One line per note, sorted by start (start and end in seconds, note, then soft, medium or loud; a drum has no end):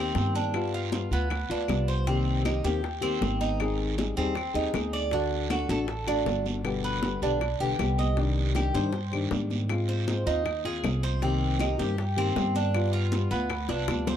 0.00 0.12 D#2 medium
0.00 0.14 D#3 soft
0.00 0.15 A#3 medium
0.00 0.15 C4 medium
0.00 0.34 C4 medium
0.00 0.15 G4 medium
0.15 1.05 G2 medium
0.15 0.53 D#3 soft
0.15 0.53 A#3 soft
0.15 0.54 C4 soft
0.15 0.55 G4 medium
0.15 high bongo medium
0.15 low bongo medium
0.15 high conga medium
0.15 short guiro medium
0.35 0.72 D4 medium
0.35 high bongo soft
0.35 high conga medium
0.35 short guiro medium
0.54 0.91 G3 medium
0.54 0.92 B3 medium
0.54 0.92 F4 medium
0.54 high bongo medium
0.54 high conga soft
0.54 long guiro medium
0.54 claves medium
0.74 1.11 F4 medium
0.74 high conga soft
0.92 1.11 G3 soft
0.92 1.11 B3 soft
0.92 1.10 F4 medium
0.92 high bongo medium
0.92 high conga medium
0.92 short guiro medium
1.11 1.47 D2 medium
1.11 1.49 B3 medium
1.11 1.30 B3 soft
1.11 1.30 F4 medium
1.11 high bongo soft
1.11 short guiro medium
1.30 muted nylon-string guitar stroke medium
1.30 high bongo medium
1.30 high conga soft
1.30 long guiro medium
1.30 claves medium
1.49 1.67 D2 medium
1.49 1.69 B3 medium
1.49 1.87 D4 medium
1.49 1.68 F4 medium
1.49 high conga soft
1.68 2.58 C2 medium
1.68 2.06 G3 soft
1.68 2.07 B3 soft
1.68 2.07 F4 medium
1.68 high bongo medium
1.68 low bongo medium
1.68 high conga medium
1.68 short guiro medium
1.68 claves medium
1.88 2.06 C5 medium
1.88 high bongo soft
1.88 short guiro medium
2.07 2.44 C3 medium
2.07 2.45 D#3 medium
2.07 2.45 A#3 medium
2.07 2.44 C4 medium
2.07 2.45 C4 medium
2.07 2.45 G4 medium
2.07 high bongo medium
2.07 high conga soft
2.07 long guiro medium
2.27 high conga soft
2.45 2.64 D#3 soft
2.45 2.64 A#3 medium
2.45 2.65 C4 medium
2.45 2.64 D#4 medium
2.45 2.63 G4 medium
2.45 high bongo medium
2.45 high conga medium
2.45 short guiro medium
2.45 claves medium
2.64 3.17 D#2 medium
2.64 2.83 D#3 medium
2.64 2.83 A#3 medium
2.64 2.83 C4 medium
2.64 3.01 G4 medium
2.64 2.83 G4 medium
2.64 high bongo soft
2.64 high conga medium
2.64 short guiro medium
2.83 muted nylon-string guitar stroke medium
2.83 high bongo medium
2.83 high conga soft
2.83 long guiro medium
3.01 3.20 D#3 medium
3.01 3.21 A#3 medium
3.01 3.39 C4 medium
3.01 3.21 C4 medium
3.01 3.20 G4 medium
3.01 high bongo soft
3.01 high conga soft
3.01 claves medium
3.21 4.11 G#1 medium
3.21 3.59 D#3 soft
3.21 3.59 A#3 soft
3.21 3.59 C4 medium
3.21 3.60 G4 soft
3.21 high bongo medium
3.21 low bongo medium
3.21 high conga medium
3.21 short guiro medium
3.41 3.78 D#4 medium
3.41 high bongo soft
3.41 high conga medium
3.41 short guiro medium
3.60 3.97 D#3 medium
3.60 3.97 C4 medium
3.60 3.98 D#4 medium
3.60 3.98 G#4 medium
3.60 high bongo medium
3.60 high conga soft
3.60 long guiro medium
3.60 claves medium
3.79 high conga soft
3.98 4.16 G3 soft
3.98 4.16 C4 soft
3.98 4.17 D#4 medium
3.98 4.16 G#4 medium
3.98 high bongo medium
3.98 high conga medium
3.98 short guiro medium
4.16 4.52 D#2 medium
4.16 4.35 G3 medium
4.16 4.54 C4 medium
4.16 4.35 C4 medium
4.16 4.35 D#4 medium
4.16 4.36 G#4 medium
4.16 high bongo soft
4.16 short guiro medium
4.35 muted nylon-string guitar stroke medium
4.35 high bongo medium
4.35 high conga soft
4.35 long guiro medium
4.35 claves medium
4.54 4.72 D#2 medium
4.54 4.74 G3 medium
4.54 4.73 C4 medium
4.54 4.73 D#4 medium
4.54 4.92 D#4 medium
4.54 4.73 G#4 medium
4.54 high conga soft
4.73 5.63 D2 medium
4.73 5.12 C4 medium
4.73 5.12 D#4 medium
4.73 5.12 G#4 medium
4.73 high bongo medium
4.73 low bongo medium
4.73 high conga medium
4.73 short guiro medium
4.73 claves medium
4.93 5.12 D5 medium
4.93 high bongo soft
4.93 short guiro medium
5.11 5.49 D3 medium
5.11 5.50 A3 medium
5.11 5.50 D4 medium
5.11 5.51 F#4 medium
5.11 high bongo medium
5.11 high conga soft
5.11 long guiro medium
5.31 high conga soft
5.50 5.69 D3 soft
5.50 5.69 A3 medium
5.50 5.69 D4 medium
5.50 5.69 F#4 medium
5.50 5.68 F#4 soft
5.50 high bongo medium
5.50 high conga medium
5.50 short guiro medium
5.50 claves medium
5.69 6.22 A1 medium
5.69 5.88 A3 medium
5.69 5.88 D4 medium
5.69 5.88 F#4 medium
5.69 6.07 A4 medium
5.69 high bongo soft
5.69 high conga medium
5.69 short guiro medium
5.88 muted nylon-string guitar stroke medium
5.88 high bongo medium
5.88 high conga soft
5.88 long guiro medium
6.07 6.26 A3 medium
6.07 6.45 D4 medium
6.07 6.26 D4 medium
6.07 6.26 F#4 medium
6.07 high bongo soft
6.07 high conga soft
6.07 claves medium
6.26 7.16 G1 medium
6.26 6.63 D3 medium
6.26 6.64 A3 soft
6.26 6.65 D4 medium
6.26 6.65 F#4 medium
6.26 high bongo medium
6.26 low bongo medium
6.26 high conga medium
6.26 short guiro medium
6.46 high bongo soft
6.46 high conga medium
6.46 short guiro medium
6.64 7.02 B2 medium
6.64 7.02 D3 medium
6.64 7.02 G3 medium
6.64 7.02 B3 medium
6.64 7.02 G4 medium
6.64 high bongo medium
6.64 long guiro medium
6.64 claves medium
6.83 7.21 B4 medium
6.83 high conga soft
7.02 7.21 D3 soft
7.02 7.22 G3 medium
7.02 7.22 B3 medium
7.02 7.21 G4 soft
7.02 high bongo medium
7.02 high conga medium
7.02 short guiro medium
7.22 7.57 B1 medium
7.22 7.41 D3 medium
7.22 7.41 G3 medium
7.22 7.41 B3 medium
7.22 7.59 D4 medium
7.22 7.40 G4 medium
7.22 high bongo soft
7.22 short guiro medium
7.41 muted nylon-string guitar stroke medium
7.41 high bongo medium
7.41 high conga soft
7.41 long guiro medium
7.41 claves medium
7.60 7.78 B1 medium
7.60 7.78 D3 soft
7.60 7.79 G3 medium
7.60 7.79 B3 medium
7.60 7.97 G4 medium
7.60 7.79 G4 medium
7.60 high conga soft
7.79 8.69 C2 medium
7.79 8.17 D3 soft
7.79 8.17 G3 medium
7.79 8.17 B3 soft
7.79 8.18 G4 medium
7.79 high bongo medium
7.79 low bongo medium
7.79 high conga medium
7.79 short guiro medium
7.79 claves medium
7.98 8.17 D#5 medium
7.98 high bongo soft
7.98 high conga medium
7.98 short guiro medium
8.17 8.54 C3 medium
8.17 8.54 D#3 medium
8.17 8.54 G3 medium
8.17 8.55 D4 medium
8.17 8.55 G4 medium
8.17 high bongo medium
8.17 high conga soft
8.17 long guiro medium
8.37 high conga soft
8.55 8.73 D#3 medium
8.55 8.74 G3 medium
8.55 8.74 D4 medium
8.55 8.74 G4 medium
8.55 8.73 G4 medium
8.55 high bongo medium
8.55 high conga medium
8.55 short guiro medium
8.55 claves medium
8.74 9.28 G2 medium
8.74 8.92 D#3 medium
8.74 8.93 G3 medium
8.74 8.93 D4 medium
8.74 8.93 G4 medium
8.74 9.11 C5 medium
8.74 high bongo soft
8.74 high conga medium
8.74 short guiro medium
8.93 muted nylon-string guitar stroke medium
8.93 high bongo medium
8.93 high conga soft
8.93 long guiro medium
9.12 9.30 D#3 medium
9.12 9.31 G3 medium
9.12 9.32 D4 medium
9.12 9.31 G4 medium
9.12 high bongo soft
9.12 high conga soft
9.12 claves medium
9.31 10.21 G#2 medium
9.31 9.69 D#3 soft
9.31 9.69 G3 soft
9.31 9.69 D4 soft
9.31 9.70 G4 medium
9.31 high bongo medium
9.31 low bongo medium
9.31 high conga medium
9.31 short guiro medium
9.50 high bongo soft
9.50 high conga medium
9.50 short guiro medium
9.69 10.07 G#3 medium
9.69 10.08 C4 medium
9.69 10.08 F4 medium
9.69 high bongo medium
9.69 high conga soft
9.69 long guiro medium
9.69 claves medium
9.89 10.26 C5 medium
9.89 high conga soft
10.08 10.26 G#3 medium
10.08 10.27 C4 medium
10.08 10.25 F4 medium
10.08 high bongo medium
10.08 high conga medium
10.08 short guiro medium
10.26 10.80 D#2 medium
10.26 10.45 C4 medium
10.26 10.64 D#4 medium
10.26 10.45 F4 medium
10.26 high bongo soft
10.26 short guiro medium
10.45 muted nylon-string guitar stroke medium
10.45 high bongo medium
10.45 high conga soft
10.45 long guiro medium
10.45 claves medium
10.65 10.84 C4 medium
10.65 10.83 F4 medium
10.65 11.02 G#4 medium
10.65 high conga soft
10.83 11.73 C2 medium
10.83 11.22 G#3 soft
10.83 11.22 C4 medium
10.83 11.22 F4 medium
10.83 high bongo medium
10.83 low bongo medium
10.83 high conga medium
10.83 short guiro medium
10.83 claves medium
11.03 11.22 C5 medium
11.03 high bongo soft
11.03 short guiro medium
11.22 11.59 C3 medium
11.22 11.59 D#3 medium
11.22 11.60 A#3 medium
11.22 11.59 C4 medium
11.22 11.60 C4 medium
11.22 11.60 G4 medium
11.22 high bongo medium
11.22 high conga soft
11.22 long guiro medium
11.41 high conga soft
11.59 11.79 D#3 soft
11.59 11.79 A#3 medium
11.59 11.78 C4 soft
11.59 11.79 D#4 medium
11.59 11.77 G4 medium
11.59 high bongo medium
11.59 high conga medium
11.59 short guiro medium
11.59 claves medium
11.78 12.32 G2 medium
11.78 11.98 D#3 medium
11.78 11.98 A#3 medium
11.78 11.97 C4 medium
11.78 11.97 G4 medium
11.78 12.16 G4 medium
11.78 high bongo soft
11.78 high conga medium
11.78 short guiro medium
11.98 muted nylon-string guitar stroke medium
11.98 high bongo medium
11.98 high conga soft
11.98 long guiro medium
12.17 12.35 D#3 medium
12.17 12.35 A#3 medium
12.17 12.35 C4 medium
12.17 12.54 C4 medium
12.17 12.35 G4 medium
12.17 high bongo soft
12.17 high conga soft
12.17 claves medium
12.36 13.25 G2 medium
12.36 12.73 D#3 soft
12.36 12.73 A#3 soft
12.36 12.74 C4 medium
12.36 12.74 G4 medium
12.36 high bongo medium
12.36 low bongo medium
12.36 high conga medium
12.36 short guiro medium
12.55 12.92 D4 medium
12.55 high bongo soft
12.55 high conga medium
12.55 short guiro medium
12.74 13.11 G3 medium
12.74 13.12 B3 medium
12.74 13.12 F4 medium
12.74 high bongo medium
12.74 high conga soft
12.74 long guiro medium
12.74 claves medium
12.93 13.30 F4 medium
12.93 high conga soft
13.12 13.31 G3 soft
13.12 13.31 B3 soft
13.12 13.30 F4 medium
13.12 high bongo medium
13.12 high conga medium
13.12 short guiro medium
13.31 13.66 D2 medium
13.31 13.68 B3 medium
13.31 13.50 B3 medium
13.31 13.49 F4 medium
13.31 high bongo soft
13.31 short guiro medium
13.50 muted nylon-string guitar stroke medium
13.50 high bongo medium
13.50 high conga soft
13.50 long guiro medium
13.50 claves medium
13.69 13.87 C2 medium
13.69 13.88 B3 medium
13.69 14.06 D4 medium
13.69 13.87 F4 medium
13.69 high bongo medium
13.69 high conga soft
13.88 14.17 D2 medium
13.88 14.17 G3 medium
13.88 14.17 B3 medium
13.88 14.17 F4 medium
13.88 high bongo medium
13.88 high conga medium
13.88 short guiro medium
13.88 claves medium
14.07 14.17 C5 medium
14.07 low bongo medium
14.07 high conga medium
14.07 short guiro medium